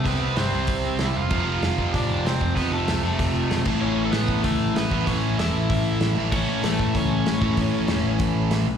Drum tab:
CC |--------|x-------|-------x|--------|
HH |o-o-o-o-|--o-o-o-|o-o-o-o-|--o-o-o-|
SD |--o---o-|--o---o-|--o---o-|--o---o-|
BD |o---o---|o--oo--o|o---o--o|---oo--o|

CC |--------|x-------|--------|
HH |o-o-o-o-|--o-o-o-|o-o-o-o-|
SD |--o---o-|--o---o-|--o---o-|
BD |o---o---|o--oo--o|o---o---|